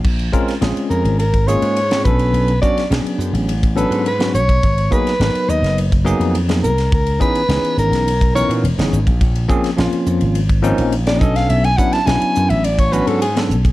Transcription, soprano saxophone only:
X:1
M:4/4
L:1/16
Q:1/4=105
K:Bbphr
V:1 name="Soprano saxophone"
z6 B2 B2 d4 =B2- | =B2 =d2 z6 B2 B2 ^c2- | ^c2 _c4 e2 z6 B2 | B2 c4 B4 d2 z4 |
z12 z =d e f | =e a ^f =a _a3 e =d ^c =B =A _A2 z2 |]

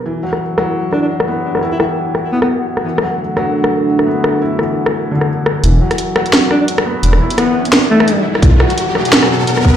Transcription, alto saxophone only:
X:1
M:4/4
L:1/16
Q:"Swing 16ths" 1/4=172
K:Em
V:1 name="Alto saxophone"
z8 z2 D D z4 | z3 E E z4 z B, B, z4 | z16 | z16 |
z8 z2 D D z4 | z4 B,3 z3 A,4 z2 | z16 |]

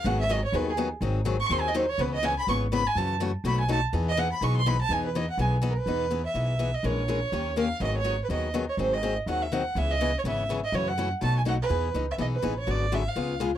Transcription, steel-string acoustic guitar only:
X:1
M:4/4
L:1/8
Q:"Swing" 1/4=247
K:E
V:1 name="Steel-string acoustic guitar"
[D,F,B,DG] z [D,F,B,DG] z [D,F,B,DG] z [D,F,B,DG] z | [D,F,^B,DG] z [D,F,B,DG] z [D,F,B,DG] z [D,F,B,DG] z | [C,E,B,CG] z [C,E,B,CG] z [C,E,B,CG] z [C,E,B,CG] z | [C,E,A,CF] z [C,E,A,CF] z [B,,F,A,DF] z [B,,F,A,DF] z |
[E,B,DG] z [E,B,DG] z [E,B,DG] z [E,B,DG] z | [E,B,DG] z [E,B,DG] z [E,B,DG] z [E,B,DG] z | [E,B,DG] z [E,B,DG] z [E,B,DG] z [E,B,DG] z | [E,G,CG^A] z [E,G,CGA] z [D,^A,C=GA] z [D,A,CGA] z |
[D,F,B,DG] z [D,F,B,DG] z [D,F,B,DG] z [D,F,B,DG] z | [D,F,^B,DG] z [D,F,B,DG] z [D,F,B,DG] z [D,F,B,DG] z | [C,E,B,CG] z [C,E,B,CG] z [C,E,B,CG] z [C,E,B,CG] z | [C,E,A,CF] z [C,E,A,CF] z [B,,F,A,DF] z [B,,F,A,DF] z |
[E,B,DG] z [E,B,DG] z [E,B,DG] z [E,B,DG] z | [=D,F,B,FG] z [D,F,B,FG] z [C,G,B,^EG] z [C,G,B,EG] z |]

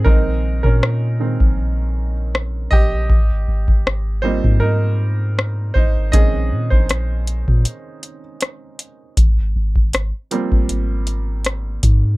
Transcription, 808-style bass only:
X:1
M:4/4
L:1/16
Q:"Swing 16ths" 1/4=79
K:Ab
V:1 name="808-style bass" clef=bass
B,,,3 B,,4 B,,,6- B,,, B,,,2 | A,,,2 A,,, A,,,4 A,,6- A,, A,,,2 | B,,,2 B,, B,,,4 B,, z8 | A,,,2 A,,, A,,,2 z2 A,,,6- A,,, A,,2 |]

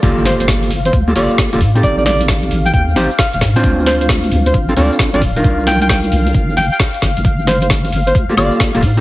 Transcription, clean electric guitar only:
X:1
M:4/4
L:1/16
Q:"Swing 16ths" 1/4=133
K:Gm
V:1 name="Clean electric guitar"
[B,FGA]6 z3 [B,FGA] [B,FGA]3 [B,FGA] z [CEGA]- | [CEGA]8- [CEGA]2 [CEGc] z4 [CDFc]- | [CDFc]8- [CDFc] [CDFA] [CDFA]3 [CDFA] z [DEFB]- | [DEFB]8- [DEFB]2 z6 |
z8 z [B,FGA] [B,FGA]3 [B,FGA] z [CE] |]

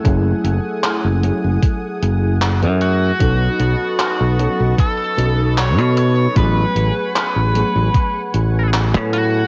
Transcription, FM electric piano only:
X:1
M:4/4
L:1/8
Q:1/4=76
K:F#dor
V:1 name="FM electric piano"
[F,A,CEG]3 [F,A,CEG]4- [F,A,CEG] | [F,B,CDA]3 [F,B,CDA]2 [F,B,CDA]3 | [F,A,B,CG]3 [F,A,B,CG]4- [F,A,B,CG] |]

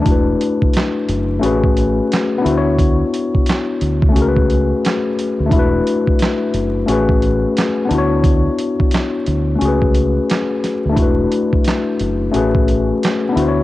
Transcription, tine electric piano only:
X:1
M:4/4
L:1/8
Q:"Swing 16ths" 1/4=88
K:A
V:1 name="Tine electric piano"
[A,DEFB]4 [A,CFGB]3 [B,DEF=c^c]- | [B,DEF=c^c]4 [A,CFG_B=B]4 | [A,DEFB]4 [A,CFGB]3 [B,DEFc]- | [B,DEFc]4 [A,CFGB]4 |
[A,DEFB]4 [A,CFGB]3 [B,DEF=c^c] |]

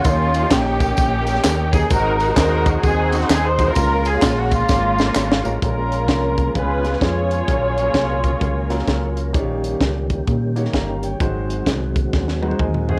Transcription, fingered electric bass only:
X:1
M:4/4
L:1/8
Q:"Swing" 1/4=129
K:Db
V:1 name="Fingered electric bass" clef=bass
E,,2 B,,,2 B,,,2 E,,2 | A,,,2 E,,2 E,,2 E,,2 | D,,2 B,,,2 A,,,2 A,,, =A,,, | B,,,2 C,,2 D,,2 F,,2 |
B,,,2 C,,2 D,,2 D,,2 | B,,,2 D,,2 B,,2 =G,,,2 | A,,,2 C,,2 E,,2 E,,2 |]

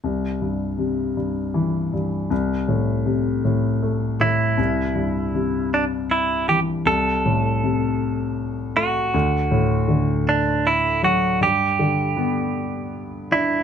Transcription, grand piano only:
X:1
M:6/8
L:1/8
Q:3/8=53
K:C
V:1 name="Grand piano" clef=bass
C,, G,, C, G,, E, G,, | C,, A,, C, A,, A, A,, | C,, G,, C,3 E, | C,, A,, C,3 A, |
D,, A,, D,3 ^F, | G,, D, B,3 D |]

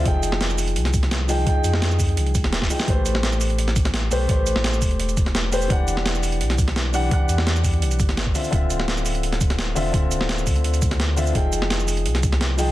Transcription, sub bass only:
X:1
M:4/4
L:1/16
Q:1/4=170
K:Am
V:1 name="Sub bass" clef=bass
F,,,8 C,,8 | z2 F,,6 C,,3 _E,,,3 z2 | A,,,12- A,,,2 B,,,2 | A,,,3 A,,,3 E,,,8- E,,,2 |
E,,,8 B,,,8 | z2 E,,6 B,,,2 G,,,4 z2 | D,,,12- D,,,2 E,,,2 | D,,,3 D,,,3 D,,8- D,,2 |
F,,,8 C,,8 |]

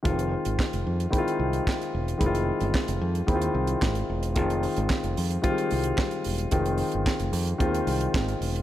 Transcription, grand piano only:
X:1
M:4/4
L:1/8
Q:1/4=111
K:Fdor
V:1 name="Grand piano"
[E,A,CF]3 z [E,A,C_F=F]3 z | [E,A,C_F=F]3 z [E,A,C_F=F]3 z | [E,A,CF]3 z [E,G,A,CF]3 z | [E,A,CF]3 z [E,A,CF]3 z |]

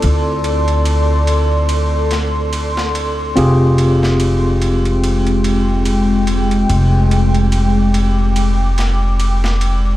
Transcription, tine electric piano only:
X:1
M:4/4
L:1/8
Q:"Swing 16ths" 1/4=72
K:Flyd
V:1 name="Tine electric piano"
[CEFA]8 | [CFG_A]8- | [CFG_A]8 |]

